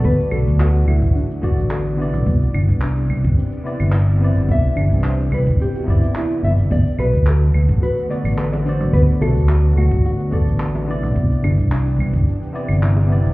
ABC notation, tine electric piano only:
X:1
M:4/4
L:1/8
Q:1/4=108
K:Dmix
V:1 name="Tine electric piano"
[D,B,Fd]4- [D,B,Fd] [D,B,Fd]2 [C,B,Ed]- | [C,B,Ed]4- [C,B,Ed] [C,B,Ed]2 [C,B,Ed]- | [C,B,Ed]4- [C,B,Ed] [C,B,Ed]3 | z4 z [D,B,Fd]2 [D,B,Fd]- |
[D,B,Fd]4- [D,B,Fd] [D,B,Fd]2 [C,B,Ed]- | [C,B,Ed]4- [C,B,Ed] [C,B,Ed]2 [C,B,Ed] |]